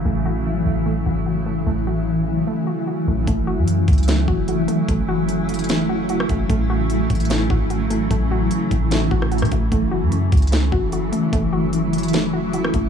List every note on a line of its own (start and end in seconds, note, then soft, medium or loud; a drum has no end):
0.00 3.23 C#3 medium
0.00 3.24 E3 medium
0.00 3.24 F#3 medium
0.00 3.24 A3 medium
0.00 3.24 E4 medium
0.05 0.63 A1 loud
0.05 0.85 A3 loud
0.25 1.05 F#4 medium
0.66 1.04 A1 loud
0.86 1.45 A3 medium
1.06 1.64 G#1 loud
1.06 1.25 F#4 medium
1.26 1.86 F#4 medium
1.46 1.65 A3 medium
1.66 2.44 A1 loud
1.66 2.46 A3 loud
1.87 2.66 F#4 medium
2.47 3.07 A3 medium
2.67 2.86 F#4 medium
2.87 3.28 F#4 medium
3.07 3.27 A1 loud
3.07 3.26 A3 medium
3.27 3.59 F#1 loud
3.27 12.89 C#3 medium
3.27 6.46 E3 medium
3.27 6.46 F#3 medium
3.27 12.89 A3 medium
3.27 4.07 A3 medium
3.27 9.68 E4 medium
3.27 kick loud
3.27 closed hi-hat medium
3.47 4.27 F#4 medium
3.58 3.86 F#2 medium
3.68 closed hi-hat medium
3.88 4.27 C#2 loud
3.88 kick medium
3.88 closed hi-hat medium
3.93 closed hi-hat medium
3.98 closed hi-hat medium
4.03 closed hi-hat medium
4.08 4.67 A3 medium
4.08 snare loud
4.08 closed hi-hat medium
4.28 4.67 F#1 loud
4.28 4.47 F#4 medium
4.28 kick loud
4.48 5.07 F#4 medium
4.48 closed hi-hat medium
4.68 4.87 A3 medium
4.68 closed hi-hat medium
4.88 6.25 F#1 loud
4.88 5.68 A3 loud
4.88 kick loud
4.88 closed hi-hat medium
5.08 5.88 F#4 medium
5.29 closed hi-hat medium
5.49 closed hi-hat medium
5.54 closed hi-hat medium
5.59 closed hi-hat medium
5.64 closed hi-hat medium
5.69 6.29 A3 medium
5.69 snare loud
5.69 closed hi-hat medium
5.89 6.09 F#4 medium
6.09 6.50 F#4 medium
6.09 closed hi-hat medium
6.20 cross-stick loud
6.29 6.49 F#1 loud
6.29 6.48 A3 medium
6.29 kick medium
6.29 closed hi-hat medium
6.50 7.08 A1 loud
6.50 12.89 E3 medium
6.50 9.69 F#3 medium
6.50 7.29 A3 loud
6.50 kick loud
6.50 closed hi-hat medium
6.70 7.49 F#4 medium
6.90 closed hi-hat medium
7.10 7.49 A1 loud
7.10 kick medium
7.10 closed hi-hat medium
7.15 closed hi-hat medium
7.20 closed hi-hat medium
7.25 closed hi-hat medium
7.30 7.89 A3 medium
7.30 snare loud
7.30 closed hi-hat medium
7.50 8.08 G#1 loud
7.50 7.69 F#4 medium
7.50 kick loud
7.70 8.30 F#4 medium
7.70 closed hi-hat medium
7.90 8.09 A3 medium
7.90 closed hi-hat medium
8.11 8.49 A1 loud
8.11 8.90 A3 loud
8.11 kick loud
8.11 closed hi-hat medium
8.31 9.10 F#4 medium
8.51 closed hi-hat medium
8.71 9.10 A1 loud
8.71 kick medium
8.71 closed hi-hat medium
8.91 9.51 A3 loud
8.91 snare loud
8.91 closed hi-hat medium
9.11 9.43 A1 loud
9.11 9.30 F#4 medium
9.11 kick loud
9.22 cross-stick medium
9.32 9.72 F#4 medium
9.32 closed hi-hat medium
9.38 9.51 E3 loud
9.38 closed hi-hat medium
9.42 cross-stick loud
9.42 closed hi-hat medium
9.52 9.71 A1 loud
9.52 9.70 A3 medium
9.52 kick medium
9.52 closed hi-hat medium
9.72 10.03 F#1 loud
9.72 12.89 F#3 medium
9.72 10.51 A3 medium
9.72 12.89 E4 medium
9.72 kick loud
9.72 closed hi-hat medium
9.91 10.71 F#4 medium
10.02 10.31 F#2 medium
10.12 closed hi-hat medium
10.32 10.71 C#2 loud
10.32 kick loud
10.32 closed hi-hat medium
10.37 closed hi-hat medium
10.42 closed hi-hat medium
10.47 closed hi-hat medium
10.52 11.11 A3 medium
10.52 snare loud
10.52 closed hi-hat medium
10.72 11.11 F#1 loud
10.72 10.92 F#4 medium
10.72 kick loud
10.92 11.51 F#4 medium
10.92 closed hi-hat medium
11.12 11.31 A3 medium
11.12 closed hi-hat medium
11.32 12.70 F#1 loud
11.32 12.12 A3 loud
11.32 kick loud
11.32 closed hi-hat medium
11.53 12.32 F#4 medium
11.73 closed hi-hat medium
11.93 closed hi-hat medium
11.98 closed hi-hat medium
12.03 closed hi-hat medium
12.08 closed hi-hat medium
12.13 12.73 A3 medium
12.13 snare loud
12.13 closed hi-hat medium
12.33 12.53 F#4 medium
12.53 12.89 F#4 medium
12.53 closed hi-hat medium
12.64 cross-stick loud
12.74 12.89 F#1 loud
12.74 12.89 A3 medium
12.74 kick medium
12.74 closed hi-hat medium